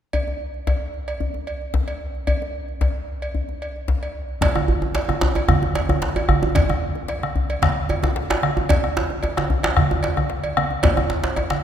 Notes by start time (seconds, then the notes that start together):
0.13 cowbell, djembe bass
0.28 djembe tone
0.40 djembe slap
0.54 djembe slap
0.67 cowbell, djembe slap, djembe bass
0.94 djembe slap
1.08 cowbell
1.20 djembe bass
1.34 djembe tone
1.47 cowbell
1.61 djembe slap
1.74 djembe slap, djembe bass
1.88 cowbell
2.01 djembe slap
2.15 djembe slap
2.27 cowbell, djembe bass
2.42 djembe tone
2.55 djembe slap
2.68 djembe slap
2.81 cowbell, djembe slap, djembe bass
3.08 djembe slap
3.22 cowbell
3.35 djembe bass
3.49 djembe tone
3.62 cowbell
3.76 djembe slap
3.88 djembe slap, djembe bass
4.03 cowbell
4.15 djembe slap
4.28 djembe slap
4.41 bombo rim, bombo low, cowbell, djembe slap, djembe bass, low conga
4.55 bombo rim, high conga, djembe tone
4.68 djembe bass
4.82 djembe tone
4.95 cowbell, djembe slap
5.09 bombo rim, djembe tone, high conga
5.21 djembe slap, high conga, djembe bass
5.35 cowbell, djembe slap, djembe tone
5.48 bombo rim, bombo low, high conga, djembe bass, low conga
5.63 djembe tone
5.75 cowbell, djembe slap, high conga
5.89 bombo rim, djembe tone, high conga, djembe bass
6.02 djembe slap
6.16 cowbell, djembe tone
6.29 bombo rim, djembe slap, high conga, djembe bass
6.42 djembe tone
6.55 bombo rim, bombo low, cowbell, djembe slap, djembe bass, low conga
6.69 bombo rim, djembe tone, high conga
6.95 djembe tone
7.08 cowbell, djembe slap
7.22 bombo rim, djembe slap, high conga
7.36 high conga, djembe bass
7.50 cowbell, djembe slap, djembe tone
7.62 bombo rim, bombo low, djembe slap, high conga, low conga
7.89 cowbell, high conga, djembe tone
8.03 bombo rim, djembe slap, high conga, djembe tone, djembe bass
8.16 djembe slap
8.30 cowbell, djembe slap, high conga
8.43 bombo rim, djembe slap, high conga
8.57 djembe tone
8.69 bombo rim, bombo low, cowbell, djembe slap, low conga, djembe bass
8.84 bombo rim, high conga
8.97 djembe slap
9.10 djembe tone
9.23 cowbell, djembe slap, djembe tone
9.37 bombo rim, djembe slap, high conga
9.50 high conga, djembe bass
9.63 cowbell, djembe slap, djembe tone
9.77 bombo rim, bombo low, high conga, low conga
9.91 djembe tone
10.03 cowbell, djembe slap, high conga
10.17 bombo rim, djembe tone, high conga, djembe bass
10.29 djembe slap
10.44 cowbell, high conga
10.57 bombo rim, djembe slap, high conga
10.71 djembe tone
10.83 bombo rim, bombo low, cowbell, djembe slap, low conga, djembe bass
10.97 bombo rim, djembe tone, high conga
11.10 bombo rim, djembe slap
11.24 djembe slap, djembe tone
11.36 bombo rim, cowbell, djembe slap, djembe tone, high conga
11.50 bombo rim, djembe slap, high conga